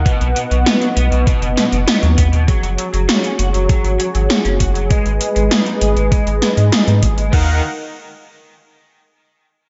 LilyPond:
<<
  \new Staff \with { instrumentName = "Supersaw synth" } { \time 4/4 \key ees \minor \tempo 4 = 99 <b b' dis'' ges''>1 | <ges' aes' des''>1 | <aes ces'' ees''>1 | <ees' bes' f'' ges''>8 r2. r8 | }
  \new Staff \with { instrumentName = "Overdriven electric guitar" } { \clef bass \time 4/4 \key ees \minor b,16 b,16 b,16 b,16 b16 fis16 b16 b,16 b,16 b,16 b,16 b,16 b16 fis16 b16 b,16 | ges16 ges16 ges16 ges16 ges'16 des'16 ges'16 ges16 ges16 ges16 ges16 ges16 ges'16 des'16 ges'16 ges16 | aes16 aes16 aes16 aes16 aes'16 ees'16 aes'16 aes16 aes16 aes16 aes16 aes16 aes'16 ees'16 aes'16 aes16 | ees8 r2. r8 | }
  \new Staff \with { instrumentName = "Analog synth bass" } { \clef bass \time 4/4 \key ees \minor r16 b,,16 r16 b,,16 r8 b,,16 b,,16 r16 fis,,16 r16 fis,,16 r16 dis,16 dis,16 dis,16 | r16 ges,,16 r16 ges,,16 r8 ges,,16 ges,,16 r16 aes,,16 r16 aes,,16 r16 ges,,16 ges,,16 ges,,16 | r16 aes,,16 r16 aes,,16 r8 aes,,16 aes,,16 r16 aes,,16 r16 aes,16 r16 aes,16 aes,,16 aes,,16 | ees,8 r2. r8 | }
  \new DrumStaff \with { instrumentName = "Drums" } \drummode { \time 4/4 <hh bd>16 hh16 hh16 hh16 <hh sn>16 hh16 hh16 hh16 <hh bd>16 hh16 <hh sn>16 hh16 <hh sn>16 hh16 <hh bd>16 hh16 | <hh bd>16 hh16 hh16 hh16 <hh sn>16 hh16 hh16 hh16 <hh bd>16 hh16 hh16 hh16 <hh sn>16 hh16 <hh bd>16 hh16 | <hh bd>16 hh16 hh16 hh16 <hh sn>16 hh16 hh16 hh16 <hh bd>16 hh16 <hh sn>16 hh16 <hh sn>16 hh16 <hh bd>16 hh16 | <cymc bd>4 r4 r4 r4 | }
>>